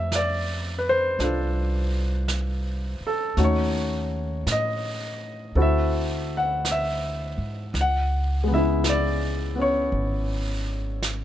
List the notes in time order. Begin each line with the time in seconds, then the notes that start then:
Already playing: F2 A3 C4 G4 E5 F5
0.12 D5, brush sweep, snare, hi-hat pedal
0.78 B4
0.89 C5
1.19 C2 D4 F4, brush sweep, snare
1.23 A4
2.28 brush sweep, snare, hi-hat pedal
3.01 muted upright bass stroke
3.07 A4
3.37 D#2 A3 C#4 D#4 F#4, brush sweep, snare
3.44 C#5
4.46 A2, brush sweep, snare, hi-hat pedal
4.52 D#5
5.55 D2 C4 E4 F#4 A4, brush sweep
5.62 E5
6.37 F#5
6.65 brush sweep, snare, hi-hat pedal
6.71 E5
7.38 G#2
7.74 C#2, brush sweep, snare
7.81 F#5
8.44 G#3 B3
8.51 C#3 E4 E5
8.84 brush sweep, snare, hi-hat pedal
8.89 D5
9.55 B3 C#4
9.62 C#5
9.92 G#1, brush sweep
11.03 brush sweep, snare, hi-hat pedal